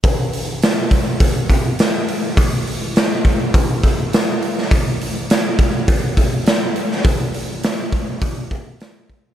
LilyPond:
\new DrumStaff \with { instrumentName = "Drums" } \drummode { \time 4/4 \tempo 4 = 103 <hho bd>8 hho8 <hho sn>8 <hho bd>8 <hho bd>8 <hho bd>8 <hho sn>8 hho8 | <hho bd>8 hho8 <hho sn>8 <hho bd>8 <hho bd>8 <hho bd>8 <hho sn>8 hho16 sn16 | <hho bd>8 hho8 <hho sn>8 <hho bd>8 <hho bd>8 <hho bd>8 <hho sn>8 hho16 sn16 | <hho bd>8 hho8 <hho sn>8 <hho bd>8 <hho bd>8 <hho bd>8 <hho sn>8 <hho bd>8 | }